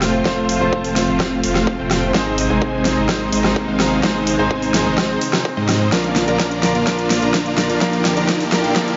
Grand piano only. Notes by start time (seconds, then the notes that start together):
Already playing: A3 C4 F4 C5
0.25 A3 C4 F4 C5
0.60 A3 C4 F4 C5
0.95 A3 C4 F4 C5
2.14 G#3 C4 D#4 C5
2.49 G#3 C4 D#4 C5
2.84 G#3 C4 D#4 C5
4.03 G#3 C4 D#4 C5
4.38 G#3 C4 D#4 C5
4.73 G#3 C4 D#4 C5
5.92 F3 A#3 D4 A#4
6.27 F3 A#3 D4 A#4
6.62 F3 A#3 D4 A#4
6.86 F3 A#3 D4 A#4
7.22 F3 A#3 D4 A#4
7.56 F3 A#3 D4 A#4
7.81 F3 A#3 D4 A#4
8.16 F3 A#3 D4 A#4
8.51 F3 A#3 D4 A#4
8.75 F3 A#3 D4 A#4